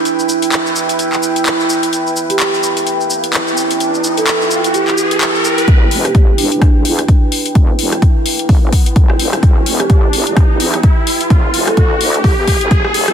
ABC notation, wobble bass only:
X:1
M:4/4
L:1/16
Q:"Swing 16ths" 1/4=128
K:Em
V:1 name="Wobble bass" clef=bass
z16 | z16 | z16 | E,,,4 G,,,3 E,,,3 E,,2 z4 |
E,,,4 z4 G,,,2 z2 E,,,4 | E,,,4 G,,,3 E,,,3 E,,2 z4 | E,,,4 D,,4 E,,2 E,,, D,, E,,,3 E,, |]